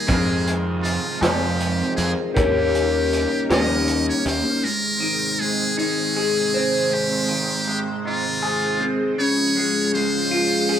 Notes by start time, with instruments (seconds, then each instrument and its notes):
Already playing: string machine D#4, muted trumpet G#4
0.07 clean electric guitar F2 C3 D#3 G#3 C4 G#4, picked electric bass F2, string machine F3 G#3 C4, kick, closed hi-hat
0.47 closed hi-hat
0.83 muted trumpet F4, closed hi-hat
1.21 picked electric bass F2, clean electric guitar F2 C3 D#3 G#3 C4 G#4, muted trumpet G4, snare, closed hi-hat
1.60 closed hi-hat
1.96 picked electric bass F2, muted trumpet G#4, closed hi-hat
2.34 picked electric bass D#2, clean electric guitar D#3 A#3 C#4 G4, string machine G3 C#4 A#4, muted trumpet G4, kick, closed hi-hat
2.75 closed hi-hat
3.13 closed hi-hat
3.50 picked electric bass D#2, clean electric guitar D#3 A#3 C#4 G4, muted trumpet D#5, snare, closed hi-hat
3.88 closed hi-hat
4.09 muted trumpet C#5
4.25 picked electric bass D#2, muted trumpet C5, closed hi-hat
4.63 clean electric guitar G#2, string machine D#3 G#3 C4 C5, muted trumpet A#4
5.00 clean electric guitar D#3
5.40 clean electric guitar G#3, muted trumpet G#4
5.78 clean electric guitar D#4, muted trumpet G#4
6.17 clean electric guitar G#4
6.54 clean electric guitar C4
6.90 clean electric guitar G#2, muted trumpet G4
7.29 clean electric guitar D#3
7.67 clean electric guitar G#3
8.05 clean electric guitar D#4, muted trumpet F4
8.42 clean electric guitar G#4
8.80 clean electric guitar C4
9.18 clean electric guitar C#3, string machine F3 C#4 G#4, muted trumpet C#5
9.57 clean electric guitar G#3
9.94 clean electric guitar G#3, muted trumpet C5
10.31 clean electric guitar F4
10.69 clean electric guitar G#4